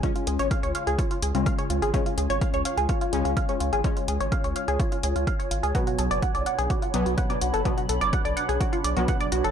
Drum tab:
HH |xxxxxxxxxxxxxxxx|xxxxxxxxxxxxxxxx|xxxxxxxxxxxxxxxx|xxxxxxxxxxxxxxxx|
BD |o---o---o---o---|o---o---o---o---|o---o---o---o---|o---o---o---o---|

HH |xxxxxxxxxxxxxxxx|
BD |o---o---o---o---|